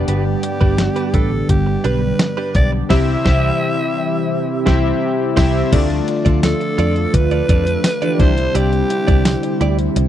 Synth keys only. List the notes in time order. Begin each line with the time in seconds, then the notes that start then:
Already playing: G2 B3 D4 G4 D5
2.55 B3 D4 G4 D5
2.89 C3 C4 E4 G4 E5
3.24 C3 C4 E4 G4 E5
4.66 C3 C4 E4 G4 E5
5.36 C3 C4 E4 G4 E5
5.72 D3 A3 D4 F4 D5
8.18 C3 G3 D4 E4 C5